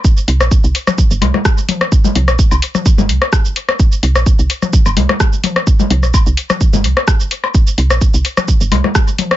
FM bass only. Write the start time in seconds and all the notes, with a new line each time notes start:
0.28 C2
0.40 A#1
0.64 C2
1.11 G1
1.22 C2
2.15 C2
2.28 A#1
2.51 C2
2.98 G1
3.09 C2
4.03 C2
4.15 A#1
4.39 C2
4.86 G1
4.97 C2
5.90 C2
6.03 A#1
6.26 C2
6.73 G1
6.84 C2
7.78 C2
7.90 A#1
8.14 C2
8.61 G1
8.72 C2